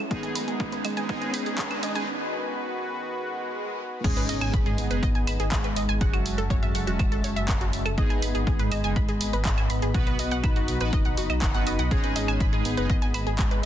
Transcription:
Already playing: C#4 F#4 B4 E5, riser
0.11 D#3 G#3 B3 D#4 G#4 B4 D#5, kick, closed hi-hat
0.23 C#4 G#5, closed hi-hat
0.35 B5, open hi-hat
0.48 G#4, closed hi-hat
0.60 G#4, kick, closed hi-hat
0.72 B4 D#5, closed hi-hat
0.85 G#3 D#5, open hi-hat, claves
0.97 G#3 D#4 G#4 G#5, closed hi-hat
1.09 G#3 B3 D#4 G#4 D#5, kick, closed hi-hat
1.22 G#5, closed hi-hat
1.34 B5, open hi-hat
1.46 G#4, closed hi-hat
1.58 G#4, kick, clap, closed hi-hat
1.71 B4, closed hi-hat, claves
1.83 G#3 D#5, open hi-hat
1.95 G#3 D#4 G#4 G#5, closed hi-hat
2.08 F#4
3.06 swell
4.04 G#1 G#3 B3 C#4 D#4 G#4 D#5, kick, closed hi-hat, crash, impact
4.17 G#1 B4, closed hi-hat
4.29 G#1 D#5, open hi-hat
4.41 G#1 G#5, closed hi-hat, claves
4.53 G#1 B5, kick, closed hi-hat
4.66 G#2 G#4, closed hi-hat
4.78 G#1 B3, open hi-hat
4.90 F#1 G#3 D#4 G#4 B4, closed hi-hat
5.03 G#1 D#5, kick, closed hi-hat
5.15 G#1 G#5, closed hi-hat
5.27 G#1 B5, open hi-hat, claves
5.40 G#1 G#4, closed hi-hat
5.52 G#1 G#3 G#4, kick, clap, closed hi-hat
5.64 G#1 B4, closed hi-hat
5.76 G#1 D#5, open hi-hat
5.89 G#1 G#5, closed hi-hat
6.01 F#1 F#3 C#4 F#4 E5 F#5 A5, kick, closed hi-hat
6.13 F#1 F#4, closed hi-hat, claves
6.26 F#1, open hi-hat
6.38 F#1 A4, closed hi-hat
6.50 F#1 G#3 C#5, kick, closed hi-hat
6.63 F#2 E5, closed hi-hat
6.75 F#1 F#5, open hi-hat
6.87 E1 F#3 C#4 F#4 E5, closed hi-hat
6.99 F#1 F#4, kick, closed hi-hat, claves
7.12 F#1 A4, closed hi-hat
7.24 F#1 C#5, open hi-hat
7.36 F#1 E5, closed hi-hat
7.49 F#1 F#5, kick, clap, closed hi-hat
7.61 F#1 F#4, closed hi-hat
7.73 F#1, open hi-hat
7.86 F#1 A4, closed hi-hat, claves
7.98 G#1 G#3 B3 D#4 G#4 D#5 B5, kick, closed hi-hat
8.10 G#1 G#5, closed hi-hat
8.22 G#1 B5, open hi-hat
8.35 G#1 G#4, closed hi-hat
8.47 G#1 G#4, kick, closed hi-hat
8.55 D#5
8.59 G#2 B4, closed hi-hat
8.71 G#1 G#3 D#5, open hi-hat, claves
8.84 F#1 G#3 D#4 G#4 G#5, closed hi-hat
8.96 G#1 B5, kick, closed hi-hat
9.09 G#1 G#4, closed hi-hat
9.21 G#1, open hi-hat
9.33 G#1 B4, closed hi-hat
9.45 G#1 B3 D#5, kick, clap, closed hi-hat
9.58 G#1 G#5, closed hi-hat, claves
9.70 G#1 B5, open hi-hat
9.82 G#1 G#4, closed hi-hat
9.94 B1 B3 F#4 B4 D#5, kick, closed hi-hat
10.07 B1 B4, closed hi-hat
10.19 B1 D#5, open hi-hat
10.31 B1 F#5, closed hi-hat
10.44 B1 D#4 B5, kick, closed hi-hat, claves
10.56 F#1 F#4, closed hi-hat
10.68 B1, open hi-hat
10.81 A1 B3 F#4 B4, closed hi-hat
10.93 F#1 D#5, kick, closed hi-hat
11.05 B1 F#5, closed hi-hat
11.17 F#1 F#4, open hi-hat
11.30 B1 D#5, closed hi-hat, claves
11.42 F#1 F#5, kick, clap, closed hi-hat
11.54 F#1 B3 F#4 B4 F#5, closed hi-hat
11.67 F#1 D#6, open hi-hat
11.79 B1 F#5, closed hi-hat
11.91 G#1 G#3 C#4 D#4 G#4, kick, closed hi-hat
12.04 G#1 B4, closed hi-hat
12.16 G#1 D#5, open hi-hat
12.28 G#1 G#5, closed hi-hat, claves
12.40 G#1 B5, kick, closed hi-hat
12.53 G#2 G#4, closed hi-hat
12.65 G#1 B3, open hi-hat
12.77 F#1 G#3 D#4 G#4 B4, closed hi-hat
12.90 G#1 D#5, kick, closed hi-hat
13.02 G#1 G#5, closed hi-hat
13.14 G#1 B5, open hi-hat, claves
13.27 G#1 G#4, closed hi-hat
13.39 G#1 G#3 G#4, kick, clap, closed hi-hat
13.51 G#1 B4, closed hi-hat

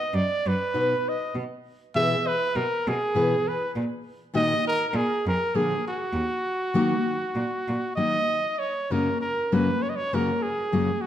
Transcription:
Already playing: D#5
0.14 F#2 D5
0.46 F#2 B4
0.74 B2 B3 D#4 F#4 B4
1.09 D#5
1.35 B2
1.95 B2 E3 E4 G#4 B4 E5
2.27 B4
2.56 B2 A#4
2.88 B2 G#4
3.15 B2 E3 E4 G#4 B4
3.48 B4
3.76 A#2
4.34 A#2 D#3 A#3 D#4 F#4 A#4 D#5
4.67 A#4
4.88 A#4
4.94 A#2 G#4
5.26 F2 A#4
5.55 A#2 D3 F3 A#3 D4 G#4
5.87 F#4
6.13 D#2
6.74 D#3 F#3 A#3 D#4 F#4
7.35 A#2
7.68 A#2
7.95 D#3 F#3 A#3 D#4 F#4 D#5
8.59 C#5
8.90 F#2 C#3 F#3 A#3 C#4 F#4 A#4
9.21 A#4
9.52 F#2 C#3 F#3 A#3 C#4 F#4 B4
9.82 C#5
9.89 D#5
9.96 C#5
10.13 F#2 C#3 F#3 A#3 C#4 F#4 A#4
10.42 G#4
10.72 F#2 C#3 F#3 A#3 C#4 F#4
11.01 F#4

